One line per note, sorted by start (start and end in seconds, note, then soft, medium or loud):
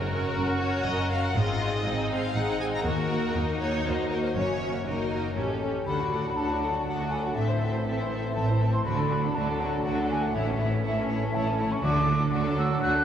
0.00 0.29 F#1 medium
0.00 0.28 F#2 medium
0.00 1.38 F#2 soft
0.00 0.11 C#4 soft
0.00 1.36 F#4 medium
0.00 0.11 A#4 soft
0.00 0.62 A#4 medium
0.12 1.38 C#4 soft
0.12 0.35 C#4 soft
0.12 0.35 A#4 soft
0.36 0.79 F#1 soft
0.36 0.78 F#2 medium
0.36 0.61 C#4 soft
0.36 0.61 A#4 soft
0.36 1.09 A#4 soft
0.60 0.86 C#4 soft
0.60 0.86 A#4 soft
0.60 0.85 C#5 medium
0.60 1.38 F#5 soft
0.86 1.28 F#1 medium
0.86 1.28 F#2 medium
0.86 1.12 C#4 soft
0.86 1.11 A#4 soft
0.86 1.38 C#5 soft
0.86 1.11 D#5 medium
1.09 1.36 C#4 soft
1.09 1.38 A#4 soft
1.09 1.36 A#4 soft
1.09 1.22 F5 medium
1.25 1.37 F#5 medium
1.35 1.77 G#1 medium
1.35 2.87 G#2 soft
1.35 1.78 G#2 medium
1.35 1.60 C4 soft
1.35 1.85 F4 medium
1.35 1.60 G#4 soft
1.35 2.11 D#5 medium
1.60 2.87 C4 soft
1.60 1.83 C4 soft
1.60 1.83 G#4 soft
1.84 2.28 G#1 medium
1.84 2.27 G#2 medium
1.84 2.09 C4 soft
1.84 2.34 D#4 medium
1.84 2.09 G#4 soft
1.84 2.59 G#4 soft
2.10 2.33 C4 soft
2.10 2.34 G#4 soft
2.10 3.84 D#5 soft
2.10 2.36 F5 medium
2.34 2.77 G#1 medium
2.34 2.77 G#2 medium
2.34 2.58 C4 soft
2.34 2.84 D#4 medium
2.34 2.58 G#4 soft
2.34 2.88 C5 soft
2.34 2.61 F#5 medium
2.59 2.84 C4 soft
2.59 2.84 G#4 soft
2.59 2.87 G#4 soft
2.59 2.65 G#5 medium
2.75 2.86 A#5 medium
2.84 3.27 D#2 medium
2.84 4.38 D#3 medium
2.84 3.09 A#3 soft
2.84 3.34 F#4 medium
2.84 3.08 F#4 soft
2.84 3.59 A#4 medium
3.10 3.34 A#3 soft
3.10 4.38 D#4 soft
3.10 3.34 F#4 soft
3.35 3.77 D#2 medium
3.35 3.59 A#3 soft
3.35 4.35 D#4 medium
3.35 3.59 F#4 soft
3.35 4.09 A#4 soft
3.60 3.84 A#3 soft
3.60 3.84 F#4 soft
3.60 3.86 C#5 medium
3.60 5.38 F#5 soft
3.85 4.27 D#2 medium
3.85 4.10 A#3 soft
3.85 4.10 F#4 soft
3.85 4.11 C5 medium
3.85 4.38 D#5 soft
4.11 4.35 A#3 soft
4.11 4.35 F#4 soft
4.11 5.38 A#4 soft
4.11 4.23 A#4 medium
4.23 4.35 C5 medium
4.35 4.77 F#1 medium
4.35 4.77 F#2 medium
4.35 5.38 F#2 soft
4.35 4.61 A#3 soft
4.35 4.85 C#4 soft
4.35 4.61 F#4 soft
4.35 4.85 C#5 medium
4.61 5.38 A#3 soft
4.61 4.86 A#3 soft
4.61 4.86 F#4 soft
4.85 5.28 F#1 soft
4.85 5.28 F#2 soft
4.85 5.11 A#3 soft
4.85 5.35 D#4 soft
4.85 5.38 F#4 soft
4.85 5.11 F#4 soft
4.85 5.37 A#4 medium
5.10 5.37 A#3 soft
5.10 5.37 F#4 soft
5.10 5.88 C#5 soft
5.35 5.78 A1 soft
5.35 5.78 A2 soft
5.35 5.89 A2 soft
5.35 5.61 C#4 soft
5.35 5.62 C#4 soft
5.35 5.61 G4 soft
5.35 5.87 A4 medium
5.61 5.89 C#4 soft
5.61 5.87 C#4 soft
5.61 5.89 G4 soft
5.61 5.87 G4 soft
5.85 6.31 D2 soft
5.85 8.81 A2 soft
5.85 7.39 D3 soft
5.85 7.32 F#3 soft
5.85 8.82 A3 soft
5.85 7.33 D4 soft
5.85 5.99 D4 soft
5.85 5.98 A4 soft
5.85 6.37 B5 medium
5.89 6.00 F#5 soft
5.99 6.12 F#4 soft
5.99 6.13 F#4 soft
5.99 6.13 D5 soft
6.04 7.03 D4 soft
6.12 6.26 D4 soft
6.12 6.24 A4 soft
6.12 6.26 F#5 soft
6.20 6.69 F#4 soft
6.20 6.36 F#4 soft
6.26 6.38 F#4 soft
6.26 6.38 D5 soft
6.35 6.80 D2 soft
6.35 6.49 D4 soft
6.35 6.48 A4 soft
6.35 7.85 A4 soft
6.35 6.86 A5 medium
6.40 6.50 F#5 soft
6.50 6.62 F#4 soft
6.50 6.63 F#4 soft
6.50 6.63 D5 soft
6.50 7.38 D5 soft
6.62 6.75 D4 soft
6.62 6.75 A4 soft
6.62 6.75 F#5 soft
6.70 7.39 F#4 soft
6.70 6.86 F#4 soft
6.76 6.88 F#4 soft
6.76 6.88 D5 soft
6.86 7.30 D2 soft
6.86 7.19 A3 soft
6.86 6.99 D4 soft
6.86 7.00 A4 soft
6.86 7.12 F#5 medium
6.86 6.99 F#5 soft
7.00 7.39 D4 soft
7.00 7.12 F#4 soft
7.00 7.13 D5 soft
7.10 7.25 D4 soft
7.10 7.24 A4 soft
7.10 7.25 F#5 soft
7.10 7.26 G#5 medium
7.20 9.83 A3 soft
7.20 7.36 D5 soft
7.20 7.37 F#5 soft
7.24 7.37 F#4 soft
7.24 7.38 F#4 soft
7.35 7.81 A1 soft
7.35 7.80 A2 soft
7.35 8.88 A2 soft
7.35 8.82 E3 soft
7.35 8.81 C4 soft
7.35 7.48 C4 soft
7.35 7.48 A4 soft
7.35 7.84 E5 medium
7.35 7.48 E5 soft
7.48 7.61 E4 soft
7.48 7.61 C5 soft
7.48 7.62 C5 soft
7.54 8.52 C4 soft
7.61 7.75 C4 soft
7.61 7.74 A4 soft
7.61 7.74 E5 soft
7.70 8.18 E4 soft
7.70 7.86 C5 soft
7.75 7.87 E4 soft
7.75 7.87 C5 soft
7.84 8.30 A1 soft
7.84 8.30 A2 soft
7.84 7.99 C4 soft
7.84 9.34 A4 soft
7.84 7.98 A4 soft
7.84 8.34 E5 medium
7.89 8.00 E5 soft
7.99 8.12 E4 soft
7.99 8.12 C5 soft
7.99 8.13 C5 soft
7.99 8.87 C5 soft
8.12 8.24 C4 soft
8.12 8.24 A4 soft
8.12 8.26 E5 soft
8.19 8.87 E4 soft
8.24 8.36 E4 soft
8.24 8.37 C5 soft
8.35 8.80 A1 soft
8.35 8.80 A2 soft
8.35 8.67 E3 soft
8.35 8.47 C4 soft
8.35 8.48 A4 soft
8.35 8.48 E5 soft
8.35 8.72 A5 medium
8.48 8.61 E4 soft
8.48 8.61 C5 soft
8.48 8.62 C5 soft
8.53 8.88 C4 soft
8.60 8.73 C4 soft
8.60 8.74 A4 soft
8.60 8.73 E5 soft
8.69 8.87 E3 soft
8.69 8.84 C6 medium
8.73 8.86 E4 soft
8.73 8.86 C5 soft
8.84 9.29 D2 soft
8.84 11.80 A2 soft
8.84 10.36 D3 soft
8.84 9.30 D3 soft
8.84 10.31 F#3 soft
8.84 11.80 A3 medium
8.84 8.98 A3 soft
8.84 10.30 D4 medium
8.84 8.97 F#4 soft
8.84 8.97 D5 soft
8.84 9.36 B5 medium
8.98 9.11 D4 soft
8.98 9.10 A4 soft
8.98 9.11 A4 soft
9.02 10.01 D4 soft
9.10 9.23 A3 soft
9.10 9.23 F#4 soft
9.10 9.23 D5 soft
9.19 9.67 F#4 soft
9.24 9.36 D4 soft
9.24 9.36 A4 soft
9.34 9.79 D2 soft
9.34 9.80 D3 soft
9.34 9.48 A3 soft
9.34 9.47 F#4 soft
9.34 10.84 A4 soft
9.34 9.47 D5 soft
9.34 9.83 A5 medium
9.48 9.60 D4 soft
9.48 9.60 A4 soft
9.52 10.37 D5 soft
9.59 9.73 F#4 soft
9.59 9.72 D5 soft
9.63 9.74 A3 soft
9.68 10.37 F#4 soft
9.68 9.84 A4 soft
9.74 9.86 D4 soft
9.74 9.86 A4 soft
9.84 10.28 D2 soft
9.84 10.29 D3 medium
9.84 10.17 A3 soft
9.84 9.98 A3 soft
9.84 9.97 F#4 soft
9.84 9.96 D5 soft
9.84 10.09 F#5 medium
9.97 10.11 D4 soft
9.97 10.10 A4 soft
9.97 10.11 A4 soft
10.02 10.37 D4 soft
10.09 10.23 A3 soft
10.09 10.23 F#4 soft
10.09 10.22 D5 soft
10.09 10.24 G#5 medium
10.18 12.82 A3 soft
10.18 10.34 A4 soft
10.22 10.36 D4 soft
10.22 10.36 A4 soft
10.22 10.35 F#5 medium
10.33 10.79 A1 medium
10.33 11.86 A2 soft
10.33 10.79 A2 medium
10.33 11.06 A2 medium
10.33 11.80 E3 medium
10.33 10.48 A3 soft
10.33 11.79 C#4 medium
10.33 10.47 E4 soft
10.33 10.46 C#5 soft
10.33 10.84 E5 medium
10.47 10.61 C#4 soft
10.47 10.59 A4 soft
10.52 11.50 C#4 soft
10.59 10.73 A3 soft
10.59 10.73 E4 soft
10.59 10.72 C#5 soft
10.69 11.16 E4 soft
10.69 10.84 A4 soft
10.73 10.85 C#4 soft
10.73 10.86 C#4 soft
10.84 11.28 A1 medium
10.84 11.28 A2 medium
10.84 10.97 A3 soft
10.84 10.96 E4 soft
10.84 12.33 A4 soft
10.84 10.96 C#5 soft
10.84 11.36 E5 medium
10.97 11.10 C#4 soft
10.97 11.10 A4 soft
10.97 11.86 C#5 soft
11.10 11.22 A3 soft
11.10 11.23 E4 soft
11.10 11.22 C#5 soft
11.17 11.86 E4 soft
11.24 11.35 C#4 soft
11.24 11.35 A4 soft
11.34 11.78 A1 medium
11.34 11.78 A2 medium
11.34 11.67 E3 soft
11.34 11.47 A3 soft
11.34 11.46 E4 soft
11.34 11.47 C#5 soft
11.34 11.73 A5 medium
11.48 11.60 C#4 soft
11.48 11.86 C#4 soft
11.48 11.60 A4 soft
11.60 11.72 A3 soft
11.60 11.73 E4 soft
11.60 11.72 C#5 soft
11.68 11.86 E3 soft
11.68 11.82 C#6 medium
11.73 11.84 C#4 soft
11.73 11.85 C#4 soft
11.73 11.85 A4 soft
11.83 12.28 D2 medium
11.83 13.04 A2 medium
11.83 12.27 D3 medium
11.83 12.54 D3 medium
11.83 13.04 D3 medium
11.83 13.04 F#3 medium
11.83 13.04 A3 medium
11.83 11.97 A3 soft
11.83 13.04 D4 medium
11.83 11.96 F#4 medium
11.83 11.96 D5 medium
11.83 12.27 D6 medium
11.97 12.09 D4 soft
11.97 12.98 D4 soft
11.97 12.09 A4 soft
12.08 12.22 A3 soft
12.08 12.21 F#4 medium
12.08 12.22 D5 soft
12.17 12.65 F#4 soft
12.17 12.33 A4 soft
12.22 12.34 D4 soft
12.22 12.34 A4 soft
12.33 12.77 D2 medium
12.33 12.77 D3 medium
12.33 12.46 A3 medium
12.33 12.45 F#4 soft
12.33 13.04 A4 soft
12.33 12.45 D5 soft
12.45 12.59 D4 soft
12.45 12.58 A4 soft
12.51 13.04 D5 soft
12.58 12.71 A3 soft
12.58 12.71 F#4 soft
12.58 12.71 D5 soft
12.58 12.81 E6 medium
12.67 13.04 F#4 soft
12.67 12.82 A4 soft
12.71 12.83 D4 soft
12.71 12.84 A4 soft
12.82 13.04 D2 medium
12.82 13.04 D3 medium
12.82 12.94 A3 soft
12.82 13.04 A3 soft
12.82 12.94 F#4 medium
12.82 12.95 D5 soft
12.82 13.04 F#6 medium
12.95 13.04 D4 medium
12.95 13.04 A4 soft
12.99 13.04 D4 soft